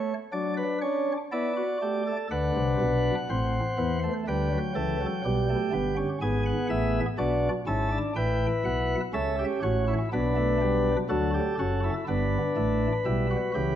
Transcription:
Already playing: A3 C#5
0.32 F#3 D4 D5
0.57 B4
0.82 C#4 C#5
1.32 B3 E4 D5
1.57 F#4
1.82 A3 G4
2.07 A4
2.31 D2 D3 D4 B4 F#5
2.56 C2 C3
2.81 B1 B2
3.30 A1 A2 C4 C5
3.78 E2 E3 B3
4.04 A3
4.28 D2 D3 G3 B4 G5
4.52 F#3
4.75 C#2 C#3 E3 A4
5.01 F#3
5.25 B1 B2 G3 G4
5.49 A3
5.73 G1 G2 B3
5.97 C#4
6.22 G#1 G#2 B3 G#4 G#5
6.46 F#5
6.70 A1 A2 E5
7.18 B1 B2 D4 F#4 D5
7.67 G#1 G#2 C#4 E4 A5
7.91 D4
8.16 A1 A2 E4 B4 G5
8.65 B1 B2 F#5
9.13 C#2 C#3 C#4 A4 E5
9.39 G4
9.63 A1 A2 F#4 C#5
9.88 E4
10.13 B1 B2 B3 D4 B4
10.36 A3
10.61 G3
11.09 D2 D3 F#3 F#4 A4
11.34 G4
11.59 F#1 F#2 C#4 F#4
11.84 E4
12.08 G1 G2 B3 D4 B4
12.56 A1 A2 A3
13.05 B1 B2 G3 E4
13.31 F#4
13.55 C#2 C#3 E3 G4

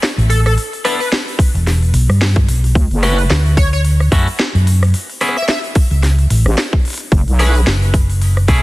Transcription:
0.03 snare, open hi-hat
0.18 A1, open hi-hat
0.30 A4, open hi-hat
0.46 A4, cross-stick, open hi-hat
0.58 open hi-hat
0.73 open hi-hat
0.84 B3 D4 E4 A4 B4, cross-stick, open hi-hat
1.00 B4, open hi-hat
1.12 snare
1.28 open hi-hat
1.39 kick, open hi-hat
1.54 E1, open hi-hat
1.67 snare, open hi-hat
1.82 open hi-hat
1.93 B1, open hi-hat
2.09 G2, cross-stick, open hi-hat
2.22 snare, open hi-hat
2.36 kick, open hi-hat
2.48 B1, open hi-hat
2.64 open hi-hat
2.75 D2, kick, open hi-hat
2.90 F#1, open hi-hat
3.03 A3 C#4 E4 F#4 B4, cross-stick, open hi-hat
3.18 open hi-hat
3.30 D2, snare, open hi-hat
3.46 open hi-hat
3.57 C#5, kick, open hi-hat
3.73 C#5, open hi-hat
3.85 open hi-hat
4.00 cross-stick, open hi-hat
4.12 F#2 A3 C#4 E4 F#4, kick, open hi-hat
4.28 open hi-hat
4.39 snare
4.55 F#2, open hi-hat
4.67 open hi-hat
4.83 cross-stick, open hi-hat
4.85 open hi-hat
4.88 open hi-hat
4.90 open hi-hat
4.92 open hi-hat
4.94 open hi-hat
5.09 open hi-hat
5.21 B3 C#4 E4 G#4, cross-stick, open hi-hat
5.29 cross-stick
5.37 E5, cross-stick, open hi-hat
5.42 cross-stick
5.48 E5, snare, open hi-hat
5.64 open hi-hat
5.75 kick, open hi-hat
5.91 C#2, open hi-hat
6.03 snare, open hi-hat
6.19 open hi-hat
6.30 A1, open hi-hat
6.46 A1, cross-stick, open hi-hat
6.58 snare, open hi-hat
6.73 kick
6.79 open hi-hat
6.85 open hi-hat
6.88 open hi-hat
6.90 open hi-hat
6.93 open hi-hat
6.98 open hi-hat
7.00 open hi-hat
7.12 F#1, kick, open hi-hat
7.27 B1, open hi-hat
7.39 A3 C#4 E4 G#4 B4, cross-stick, open hi-hat
7.55 open hi-hat
7.66 F#1, snare, open hi-hat
7.82 open hi-hat
7.94 kick, open hi-hat
8.10 open hi-hat
8.22 open hi-hat
8.37 cross-stick, open hi-hat
8.48 B1 A3 C#4 E4 G#4, kick, open hi-hat

